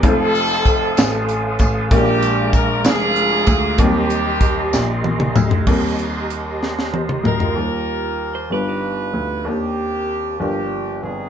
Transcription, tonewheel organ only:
0.03 A4 F5 C6 D#6
1.93 G#3 A#5 D6
3.80 G4 D#5 C6
5.68 G4 D#5 A#5 C6

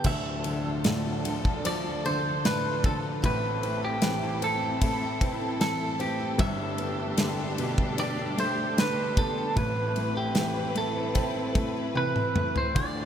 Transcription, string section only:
0.05 F3 A3 D4 A4
3.23 C4 E4 A4
6.40 D4 G4
9.56 C4 E4 B4
12.75 D4 F4 D5

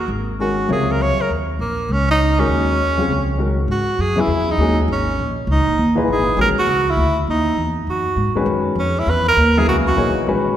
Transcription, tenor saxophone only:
0.41 F#4
0.72 G#4
0.92 A#4
1.02 C#5
1.21 A#4
1.61 A#3
1.92 C#4
2.11 D#4
2.40 C#4
3.71 F#4
4.01 G#4
4.20 E4
4.51 D#4
4.92 C#4
5.51 D#4
6.12 G#4
6.41 A#4
6.59 F#4
6.90 E4
7.30 D#4
7.90 F#4
8.79 C#4
8.99 E4
9.10 B4
9.28 A#4
9.58 G#4
9.69 F#4
9.88 F#4

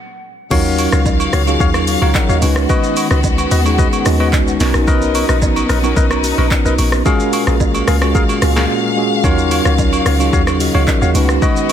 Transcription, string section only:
0.51 C#3 F#3 F5
2.42 D#3 B3 F#4
4.61 F#3 B3 D#4
7.06 A#2 G#3 F5
9.24 C#3 F#3
11.15 D#3 B3 F#4

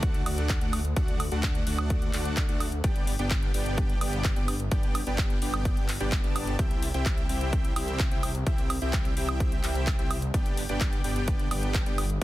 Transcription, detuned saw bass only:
Already playing: D2
0.26 D2
0.61 D2
0.96 D2
1.32 D2
1.67 D2
2.14 D2
2.49 D2
2.84 G1
3.19 G1
3.54 G1
4.01 G1
4.36 G1
4.72 G1
5.07 G1
5.42 G1
6.00 G1
6.24 G1
6.59 C2
6.94 C2
7.29 C2
7.76 C2
8.11 C2
8.47 C2
8.82 C2
9.17 C2
9.64 C2
9.99 C2
10.34 G1
10.69 G1
11.04 G1
11.51 G1
11.86 G1

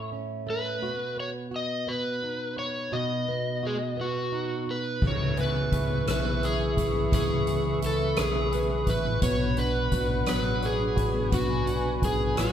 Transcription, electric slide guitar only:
0.50 B4
1.20 C#5
1.56 D#5
1.89 B4
2.59 C#5
2.93 D#5
3.67 G#4
4.01 F#4
4.71 B4
5.07 C#5
5.41 B4
6.10 B4
6.45 G#4
7.15 G#4
7.86 A4
8.20 G#4
8.90 B4
9.23 C#5
9.59 B4
10.29 B4
10.65 G#4
11.34 F#4
12.05 G#4
12.40 F#4

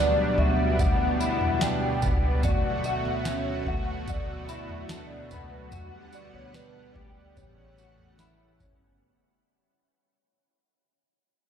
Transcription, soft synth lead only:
Already playing: D5
0.38 E5
0.80 F#5
1.61 G5
2.44 D5
2.85 E5
3.68 F#5
4.09 D5
6.14 D5
6.34 C#5
6.55 B4
6.95 D5
7.37 C#5

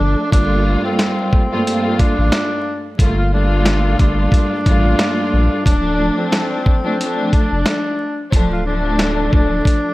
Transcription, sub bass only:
0.00 G1
0.33 G1
2.18 A1
2.99 G1
4.00 G1
4.66 A1
5.33 A#1
5.66 D1
7.52 F1
8.33 D1
9.33 D1

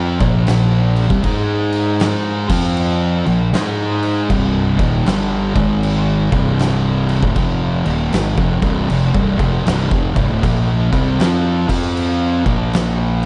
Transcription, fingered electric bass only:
Already playing: F2
0.21 A#1
1.10 C2
1.24 G#2
2.50 F2
3.27 A#1
3.54 G#2
4.30 C1
4.80 D#1
5.07 G1
5.56 G#1
6.32 C1
7.23 D1
7.36 F1
7.86 D#1
8.13 G#1
8.38 F1
8.62 C1
8.90 F1
9.15 C1
9.39 F1
9.66 C1
9.92 F1
10.16 C1
10.29 D1
10.43 A#1
10.93 C2
11.19 F2
11.69 F2
12.46 A#1

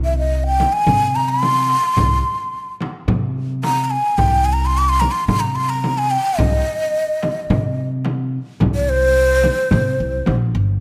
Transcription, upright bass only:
Already playing: C2
0.87 C3
1.98 C2
3.08 C3
4.18 C2
5.28 C3
6.39 C2
7.50 C3
8.61 C2
9.72 C3
10.00 C2
10.27 A#1
10.55 G1

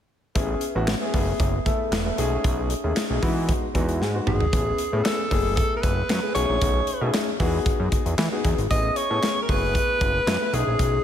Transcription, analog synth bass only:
0.36 A1
0.75 A1
1.14 F#1
1.40 F#1
1.91 E1
2.18 B1
2.44 B1
2.84 D#2
3.10 B1
3.22 E3
3.75 E2
4.01 G#2
4.27 G#1
4.53 A1
4.93 A2
5.31 F#1
5.83 F#1
6.09 F#2
6.35 B1
6.50 A#1
6.62 B1
7.01 B2
7.40 E2
7.80 F#2
8.06 E2
8.18 E3
8.45 E2
8.58 G#1
8.71 A1
9.11 A2
9.49 F#1
10.01 F#1
10.27 F#2
10.53 B1
10.67 A#1
10.80 B1

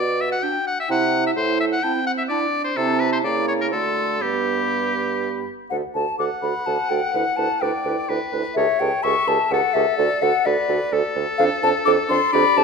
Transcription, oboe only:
Already playing: D5
0.21 E5
0.32 F#5
0.43 G5
0.67 F#5
0.80 E5
0.91 F#5
1.26 E5
1.36 C5
1.60 E5
1.72 F#5
1.83 G5
2.07 F#5
2.18 E5
2.29 D5
2.64 C5
2.77 A4
3.00 B4
3.13 C5
3.24 D5
3.48 C#5
3.61 A#4
3.72 A4
4.21 G4
6.21 F#5
7.62 D5
8.09 B4
8.57 C#5
9.03 E5
9.53 A4
10.46 B4
10.93 A4
12.32 D5

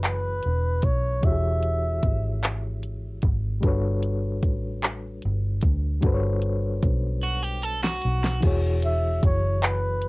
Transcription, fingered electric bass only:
Already playing: F#1
0.46 E1
0.84 B1
1.24 E1
2.04 G#1
3.24 G#1
3.64 G1
4.44 A1
5.25 G1
5.64 D2
6.04 G1
6.84 B1
8.05 B1
8.44 E1
9.24 F#1

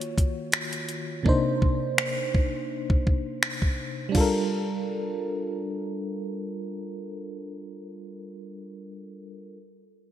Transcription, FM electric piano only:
Already playing: D#3 A#3 F4 F#4 C#5
1.23 C3 A#3 D4
1.27 D#4 C5
4.09 G3 D4
4.15 F4 A4
4.21 A#4

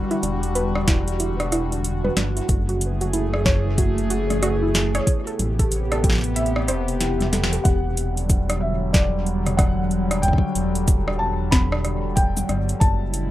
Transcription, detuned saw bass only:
0.23 E1
2.17 G1
2.49 F#1
5.39 A1
6.68 E1
7.65 E1
10.55 E1
12.49 G1
12.81 F#1

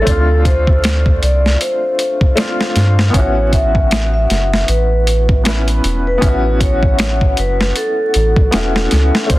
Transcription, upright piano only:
Already playing: A3 C4 D4 A4
0.02 A3 C4
0.08 D4 F4
2.36 A3 C4 D4
2.40 F4
3.10 B3 C#4
3.16 E4 F#4
5.43 B3 C#4 E4
5.48 B4
6.18 B3 C#4
6.24 E4 F#4
8.51 B3 C#4 E4
8.56 F#4
9.26 A3 C4
9.32 D4 F4

